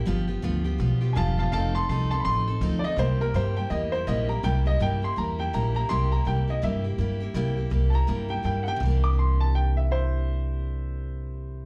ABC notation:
X:1
M:4/4
L:1/8
Q:"Swing" 1/4=165
K:Cmix
V:1 name="Upright piano"
z6 [f_a=a] [fa] | [fa] [ac'] [ac'] [ac'] [=bc']2 z [d_e] | c B c g _e c e b | g _e g c' b g b b |
c' b g _e =e z3 | z3 [ab]2 g g [^fg] | z d' c' a g e [Ec]2- | [Ec]8 |]
V:2 name="Steel-string acoustic guitar"
[G,,D,F,=B,FG] [F,B,FG] [G,,D,F,B,FG] [F,B,FG] [F,B,FG] [F,B,FG] [G,,D,F,B,FG] [F,B,FG] | [F,C_EA] [CEA] [F,CEA] [CEA] [F,CEA] [CEA] [F,CEA] [CEA] | [C,G,B,EG] [B,EG] [C,G,B,EG] [B,EG] [G,B,EG] [B,EG] [C,G,B,EG] [B,EG] | [C,G,B,EG] [B,EG] [C,G,B,EG] [B,EG] [G,B,EG] [B,EG] [C,G,B,EG] [B,EG] |
[C,G,B,EG] [B,EG] [G,B,EG] [B,EG] [C,G,B,EG] [B,EG] [G,B,EG] [B,EG] | [C,G,B,EG] [B,EG] [G,B,EG] [B,EG] [C,G,B,EG] [B,EG] [G,B,EG] [B,EG] | [C,E,G,B,DG]8- | [C,E,G,B,DG]8 |]
V:3 name="Upright bass" clef=bass
G,,,2 D,,2 =B,,,2 E,,,2 | F,,,2 C,,2 A,,,2 D,,2 | C,,2 G,,2 E,,2 B,,,2 | C,,2 G,,2 E,,2 B,,,2 |
C,,2 C,,2 G,,2 G,,2 | C,,2 C,,2 G,,2 G,,2 | C,,8- | C,,8 |]